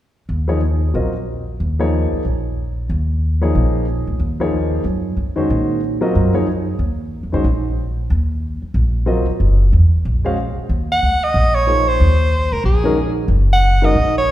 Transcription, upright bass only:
0.29 0.90 D#2 medium
0.94 1.56 A#1 medium
1.60 2.09 D#2 medium
2.12 muted upright bass stroke soft
2.25 2.86 A#1 medium
2.89 3.51 D#2 medium
3.55 4.04 A#1 medium
4.07 4.19 D2 medium
4.19 4.81 D#2 medium
4.84 5.15 F#2 medium
5.17 5.47 F2 medium
5.50 6.12 A#2 medium
6.15 6.77 F#2 medium
6.79 7.20 D#2 medium
7.23 7.33 F2 medium
7.33 7.44 C#2 medium
7.44 8.06 A#1 medium
8.10 8.59 D#2 medium
8.62 muted upright bass stroke soft
8.74 9.23 A#1 medium
9.27 muted upright bass stroke soft
9.40 9.70 F#1 medium
9.73 10.03 E2 medium
10.05 10.54 A#1 medium
10.57 muted upright bass stroke soft
10.69 11.00 D#2 medium
11.02 11.33 D2 medium
11.34 11.96 A#1 medium
12.00 12.49 D#2 medium
12.52 12.63 C#2 medium
12.64 13.26 A#1 medium
13.28 13.91 F#1 medium
13.95 14.31 A#1 medium

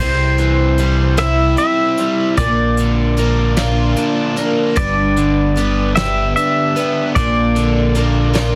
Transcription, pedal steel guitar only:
0.00 1.18 C5 medium
1.19 1.57 E5 loud
1.58 2.34 E5 medium
2.38 4.33 D5 medium
4.77 5.95 D5 medium
5.96 6.35 E5 loud
6.36 7.15 E5 loud
7.15 8.55 D5 medium

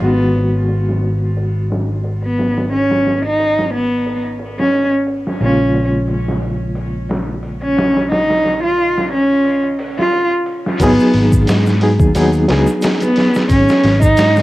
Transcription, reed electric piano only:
0.01 5.37 D#3 medium
0.01 5.37 G#3 medium
0.01 5.38 B3 medium
0.01 5.38 F#4 medium
5.41 10.77 C#3 medium
5.41 10.77 G#3 medium
5.41 10.78 A#3 medium
5.41 10.78 F4 medium
10.80 11.75 F#3 loud
10.80 11.76 B3 medium
10.80 11.76 D#4 medium
10.80 11.77 G#4 loud
11.82 12.12 F#3 medium
11.82 12.12 B3 medium
11.82 12.12 D#4 medium
11.82 12.12 G#4 medium
12.15 12.45 F#3 medium
12.15 12.45 B3 medium
12.15 12.46 D#4 medium
12.15 12.46 G#4 medium
12.48 14.42 F#3 medium
12.48 14.42 B3 medium
12.48 14.42 D#4 medium
12.48 14.42 G#4 medium

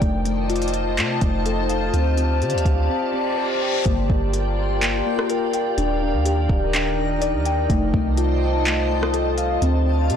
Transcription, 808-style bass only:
0.02 0.99 F1 loud
0.98 1.21 C3 loud
1.22 1.91 F1 loud
1.94 2.43 D2 loud
2.42 2.55 D3 loud
2.54 2.65 D2 loud
2.65 2.89 D2 loud
3.86 4.09 G1 loud
4.10 5.02 G1 loud
5.78 6.15 D#1 loud
6.14 6.48 D#2 loud
6.49 7.35 D#1 loud
7.34 7.68 D#2 loud
7.70 7.93 F1 loud
7.94 9.58 C2 loud
9.62 10.11 D2 loud
10.10 10.16 D3 loud

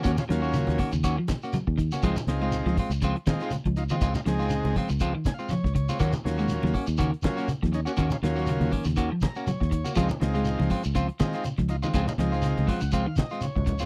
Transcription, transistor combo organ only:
0.05 0.12 C#4 medium
0.05 0.12 F#4 medium
0.19 0.24 C#4 medium
0.19 0.25 F4 medium
0.30 0.79 F#3 medium
0.30 0.79 A#3 medium
0.30 0.79 C#4 medium
0.30 0.79 F4 loud
2.03 2.17 G#3 medium
2.03 2.17 C4 medium
2.03 2.17 D#4 medium
2.03 2.17 F4 loud
2.28 2.77 G#3 medium
2.28 2.77 C4 medium
2.28 2.77 D#4 medium
2.28 2.77 F4 medium
3.28 3.52 G#3 medium
3.28 3.52 C4 medium
3.28 3.52 D#4 medium
3.28 3.52 F4 loud
3.77 3.83 D#4 medium
3.77 3.84 F4 medium
3.91 3.96 D#4 medium
3.91 3.96 F4 medium
4.02 4.08 D#4 medium
4.02 4.09 G#4 medium
4.15 4.21 D#4 medium
4.15 4.21 F4 medium
4.27 4.76 G#3 medium
4.27 4.76 C4 medium
4.27 4.76 D#4 medium
4.27 4.76 G#4 loud
5.26 5.33 G#5 medium
5.34 5.49 F5 medium
5.51 5.73 C#5 medium
5.75 5.98 C#5 medium
6.01 6.14 F#3 medium
6.01 6.14 A#3 medium
6.01 6.14 C#4 medium
6.01 6.14 F4 loud
6.25 6.74 F#3 medium
6.25 6.74 A#3 medium
6.25 6.74 C#4 medium
6.25 6.74 F4 medium
7.25 7.49 F#3 medium
7.25 7.49 A#3 medium
7.25 7.49 C#4 medium
7.25 7.49 F4 medium
7.74 7.80 C#4 medium
7.74 7.81 D#4 medium
7.87 7.92 C#4 medium
7.87 7.93 F#4 medium
7.99 8.05 C#4 medium
7.99 8.06 F4 medium
8.12 8.17 C#4 medium
8.12 8.18 F4 loud
8.23 8.72 F#3 medium
8.23 8.72 A#3 medium
8.23 8.72 C#4 medium
8.23 8.72 F4 loud
9.22 9.45 A#5 medium
9.47 9.93 C#5 medium
9.97 10.10 G#3 medium
9.97 10.10 C4 medium
9.97 10.10 D#4 medium
9.97 10.10 F4 loud
10.21 10.70 G#3 medium
10.21 10.70 C4 medium
10.21 10.70 D#4 medium
10.21 10.70 F4 medium
11.20 11.44 G#3 medium
11.20 11.44 C4 medium
11.20 11.44 D#4 medium
11.20 11.45 F4 medium
11.69 11.76 D#4 medium
11.69 11.77 F4 medium
11.83 11.89 D#4 medium
11.83 11.89 F4 medium
11.95 12.01 D#4 medium
11.95 12.01 G#4 medium
12.07 12.13 D#4 medium
12.07 12.13 F4 medium
12.19 12.68 G#3 medium
12.19 12.68 C4 medium
12.19 12.68 D#4 medium
12.19 12.68 F4 medium
12.68 12.91 F#5 medium
12.94 13.16 F5 medium
13.18 13.41 D#5 medium
13.42 13.86 C#5 medium

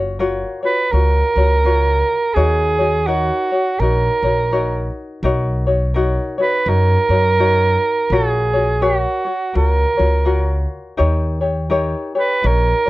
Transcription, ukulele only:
0.00 0.18 F4 soft
0.00 0.19 F#4 soft
0.00 0.19 C#5 medium
0.19 0.63 F4 medium
0.19 0.63 F#4 medium
0.19 0.63 A#4 medium
0.19 0.61 C#5 medium
0.63 0.92 F4 soft
0.63 0.92 F#4 soft
0.63 0.92 C#5 soft
0.91 1.36 F4 medium
0.91 1.37 F#4 medium
0.91 1.35 A#4 soft
0.91 1.36 C#5 medium
1.37 1.64 F4 soft
1.37 1.63 F#4 soft
1.37 1.65 C#5 soft
1.64 2.36 F4 medium
1.64 2.36 F#4 medium
1.64 2.35 A#4 medium
1.64 2.36 C#5 medium
2.36 2.79 D#4 medium
2.36 2.78 F#4 medium
2.36 2.79 A#4 medium
2.36 2.77 C#5 medium
2.78 3.07 D#4 soft
2.78 3.07 F#4 soft
2.78 3.07 C#5 soft
3.07 3.52 D#4 medium
3.07 3.52 F#4 medium
3.07 3.51 A#4 medium
3.07 3.50 C#5 medium
3.52 3.80 D#4 soft
3.52 3.81 F#4 soft
3.52 3.80 C#5 soft
3.81 4.24 D#4 medium
3.81 4.24 F#4 medium
3.81 4.24 A#4 medium
3.81 4.23 C#5 medium
4.24 4.51 D#4 soft
4.24 4.51 F#4 soft
4.24 4.51 C#5 soft
4.51 5.24 D#4 medium
4.51 5.24 F#4 medium
4.51 5.23 A#4 medium
4.51 5.25 C#5 medium
5.24 5.67 D#4 medium
5.24 5.66 F#4 medium
5.24 5.67 A#4 medium
5.24 5.66 C#5 medium
5.67 5.95 D#4 soft
5.67 5.95 F#4 soft
5.67 5.95 C#5 medium
5.94 6.39 D#4 medium
5.94 6.38 F#4 medium
5.94 6.38 A#4 medium
5.94 6.37 C#5 medium
6.38 6.67 D#4 soft
6.38 6.66 F#4 soft
6.38 6.67 C#5 soft
6.66 7.11 D#4 medium
6.66 7.10 F#4 medium
6.66 7.10 A#4 soft
6.66 7.09 C#5 medium
7.10 7.39 D#4 soft
7.10 7.38 F#4 soft
7.10 7.39 C#5 soft
7.39 8.12 D#4 medium
7.39 8.12 F#4 medium
7.39 8.11 A#4 medium
7.39 8.12 C#5 medium
8.12 8.55 F4 medium
8.12 8.54 F#4 medium
8.12 8.55 A#4 medium
8.12 8.52 C#5 medium
8.53 8.82 F4 soft
8.53 8.81 F#4 soft
8.53 8.81 C#5 soft
8.81 9.25 F#4 medium
8.81 9.26 A#4 medium
8.81 9.23 C#5 medium
9.25 9.53 F#4 soft
9.25 9.53 C#5 soft
9.54 9.98 F4 medium
9.54 9.97 F#4 medium
9.54 9.98 A#4 soft
9.54 9.96 C#5 soft
9.97 10.25 F4 soft
9.97 10.24 F#4 soft
9.97 10.25 C#5 soft
10.25 10.97 F4 medium
10.25 10.97 F#4 medium
10.25 10.97 A#4 medium
10.25 10.98 C#5 medium
10.97 11.41 D#4 medium
10.97 11.40 G4 medium
10.97 11.42 A#4 medium
10.97 11.40 C#5 medium
11.41 11.69 D#4 soft
11.41 11.69 G4 soft
11.41 11.70 C#5 soft
11.70 12.14 D#4 medium
11.70 12.14 G4 medium
11.70 12.14 A#4 medium
11.70 12.14 C#5 medium
12.15 12.42 D#4 soft
12.15 12.43 G4 soft
12.15 12.43 C#5 soft
12.42 12.87 D#4 soft
12.42 12.86 G4 soft
12.42 12.86 A#4 soft
12.42 12.84 C#5 medium
12.86 12.90 C#5 soft

